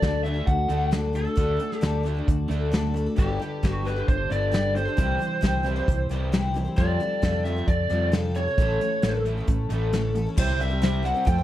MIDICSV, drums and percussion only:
0, 0, Header, 1, 2, 480
1, 0, Start_track
1, 0, Tempo, 449775
1, 1467, Time_signature, 4, 2, 24, 8
1, 12201, End_track
2, 0, Start_track
2, 0, Title_t, "Drums"
2, 24, Note_on_c, 9, 42, 65
2, 26, Note_on_c, 9, 36, 70
2, 33, Note_on_c, 9, 38, 96
2, 131, Note_off_c, 9, 42, 0
2, 133, Note_off_c, 9, 36, 0
2, 139, Note_off_c, 9, 38, 0
2, 273, Note_on_c, 9, 42, 52
2, 380, Note_off_c, 9, 42, 0
2, 503, Note_on_c, 9, 42, 66
2, 505, Note_on_c, 9, 36, 88
2, 609, Note_off_c, 9, 42, 0
2, 612, Note_off_c, 9, 36, 0
2, 740, Note_on_c, 9, 42, 62
2, 847, Note_off_c, 9, 42, 0
2, 979, Note_on_c, 9, 42, 75
2, 988, Note_on_c, 9, 38, 94
2, 1086, Note_off_c, 9, 42, 0
2, 1094, Note_off_c, 9, 38, 0
2, 1226, Note_on_c, 9, 42, 57
2, 1333, Note_off_c, 9, 42, 0
2, 1460, Note_on_c, 9, 42, 76
2, 1467, Note_on_c, 9, 36, 86
2, 1566, Note_off_c, 9, 42, 0
2, 1574, Note_off_c, 9, 36, 0
2, 1703, Note_on_c, 9, 42, 55
2, 1809, Note_off_c, 9, 42, 0
2, 1835, Note_on_c, 9, 38, 28
2, 1942, Note_off_c, 9, 38, 0
2, 1946, Note_on_c, 9, 42, 71
2, 1955, Note_on_c, 9, 38, 92
2, 2053, Note_off_c, 9, 42, 0
2, 2062, Note_off_c, 9, 38, 0
2, 2193, Note_on_c, 9, 42, 52
2, 2299, Note_off_c, 9, 42, 0
2, 2433, Note_on_c, 9, 36, 84
2, 2436, Note_on_c, 9, 42, 67
2, 2540, Note_off_c, 9, 36, 0
2, 2543, Note_off_c, 9, 42, 0
2, 2674, Note_on_c, 9, 42, 57
2, 2780, Note_off_c, 9, 42, 0
2, 2912, Note_on_c, 9, 42, 70
2, 2921, Note_on_c, 9, 38, 90
2, 3019, Note_off_c, 9, 42, 0
2, 3028, Note_off_c, 9, 38, 0
2, 3165, Note_on_c, 9, 42, 52
2, 3272, Note_off_c, 9, 42, 0
2, 3397, Note_on_c, 9, 36, 92
2, 3402, Note_on_c, 9, 42, 68
2, 3504, Note_off_c, 9, 36, 0
2, 3509, Note_off_c, 9, 42, 0
2, 3646, Note_on_c, 9, 42, 51
2, 3752, Note_off_c, 9, 42, 0
2, 3878, Note_on_c, 9, 36, 65
2, 3883, Note_on_c, 9, 42, 66
2, 3891, Note_on_c, 9, 38, 90
2, 3985, Note_off_c, 9, 36, 0
2, 3990, Note_off_c, 9, 42, 0
2, 3998, Note_off_c, 9, 38, 0
2, 4132, Note_on_c, 9, 42, 48
2, 4239, Note_off_c, 9, 42, 0
2, 4358, Note_on_c, 9, 36, 86
2, 4362, Note_on_c, 9, 42, 65
2, 4465, Note_off_c, 9, 36, 0
2, 4469, Note_off_c, 9, 42, 0
2, 4605, Note_on_c, 9, 42, 58
2, 4712, Note_off_c, 9, 42, 0
2, 4838, Note_on_c, 9, 42, 70
2, 4846, Note_on_c, 9, 38, 94
2, 4945, Note_off_c, 9, 42, 0
2, 4953, Note_off_c, 9, 38, 0
2, 5081, Note_on_c, 9, 42, 53
2, 5187, Note_off_c, 9, 42, 0
2, 5317, Note_on_c, 9, 36, 91
2, 5317, Note_on_c, 9, 42, 79
2, 5424, Note_off_c, 9, 36, 0
2, 5424, Note_off_c, 9, 42, 0
2, 5561, Note_on_c, 9, 42, 58
2, 5668, Note_off_c, 9, 42, 0
2, 5796, Note_on_c, 9, 36, 69
2, 5797, Note_on_c, 9, 42, 73
2, 5805, Note_on_c, 9, 38, 100
2, 5902, Note_off_c, 9, 36, 0
2, 5903, Note_off_c, 9, 42, 0
2, 5912, Note_off_c, 9, 38, 0
2, 6037, Note_on_c, 9, 42, 54
2, 6144, Note_off_c, 9, 42, 0
2, 6276, Note_on_c, 9, 36, 93
2, 6282, Note_on_c, 9, 42, 73
2, 6382, Note_off_c, 9, 36, 0
2, 6388, Note_off_c, 9, 42, 0
2, 6514, Note_on_c, 9, 42, 58
2, 6620, Note_off_c, 9, 42, 0
2, 6753, Note_on_c, 9, 42, 71
2, 6761, Note_on_c, 9, 38, 94
2, 6860, Note_off_c, 9, 42, 0
2, 6868, Note_off_c, 9, 38, 0
2, 6994, Note_on_c, 9, 42, 53
2, 7101, Note_off_c, 9, 42, 0
2, 7235, Note_on_c, 9, 36, 93
2, 7235, Note_on_c, 9, 42, 66
2, 7342, Note_off_c, 9, 36, 0
2, 7342, Note_off_c, 9, 42, 0
2, 7470, Note_on_c, 9, 42, 53
2, 7577, Note_off_c, 9, 42, 0
2, 7711, Note_on_c, 9, 42, 71
2, 7715, Note_on_c, 9, 36, 69
2, 7719, Note_on_c, 9, 38, 98
2, 7817, Note_off_c, 9, 42, 0
2, 7821, Note_off_c, 9, 36, 0
2, 7826, Note_off_c, 9, 38, 0
2, 7952, Note_on_c, 9, 42, 49
2, 8058, Note_off_c, 9, 42, 0
2, 8192, Note_on_c, 9, 42, 67
2, 8193, Note_on_c, 9, 36, 89
2, 8299, Note_off_c, 9, 42, 0
2, 8300, Note_off_c, 9, 36, 0
2, 8424, Note_on_c, 9, 42, 58
2, 8531, Note_off_c, 9, 42, 0
2, 8671, Note_on_c, 9, 42, 71
2, 8680, Note_on_c, 9, 38, 99
2, 8778, Note_off_c, 9, 42, 0
2, 8786, Note_off_c, 9, 38, 0
2, 8914, Note_on_c, 9, 42, 55
2, 9020, Note_off_c, 9, 42, 0
2, 9157, Note_on_c, 9, 36, 92
2, 9157, Note_on_c, 9, 42, 70
2, 9263, Note_off_c, 9, 36, 0
2, 9264, Note_off_c, 9, 42, 0
2, 9399, Note_on_c, 9, 42, 56
2, 9506, Note_off_c, 9, 42, 0
2, 9629, Note_on_c, 9, 42, 78
2, 9638, Note_on_c, 9, 38, 98
2, 9736, Note_off_c, 9, 42, 0
2, 9745, Note_off_c, 9, 38, 0
2, 9875, Note_on_c, 9, 42, 57
2, 9981, Note_off_c, 9, 42, 0
2, 10113, Note_on_c, 9, 42, 73
2, 10116, Note_on_c, 9, 36, 88
2, 10219, Note_off_c, 9, 42, 0
2, 10223, Note_off_c, 9, 36, 0
2, 10351, Note_on_c, 9, 42, 63
2, 10458, Note_off_c, 9, 42, 0
2, 10594, Note_on_c, 9, 42, 78
2, 10602, Note_on_c, 9, 38, 93
2, 10700, Note_off_c, 9, 42, 0
2, 10709, Note_off_c, 9, 38, 0
2, 10832, Note_on_c, 9, 42, 52
2, 10939, Note_off_c, 9, 42, 0
2, 11071, Note_on_c, 9, 49, 105
2, 11074, Note_on_c, 9, 36, 99
2, 11178, Note_off_c, 9, 49, 0
2, 11181, Note_off_c, 9, 36, 0
2, 11313, Note_on_c, 9, 42, 61
2, 11420, Note_off_c, 9, 42, 0
2, 11554, Note_on_c, 9, 42, 80
2, 11562, Note_on_c, 9, 38, 96
2, 11661, Note_off_c, 9, 42, 0
2, 11669, Note_off_c, 9, 38, 0
2, 11793, Note_on_c, 9, 42, 60
2, 11900, Note_off_c, 9, 42, 0
2, 12028, Note_on_c, 9, 36, 97
2, 12028, Note_on_c, 9, 42, 78
2, 12135, Note_off_c, 9, 36, 0
2, 12135, Note_off_c, 9, 42, 0
2, 12201, End_track
0, 0, End_of_file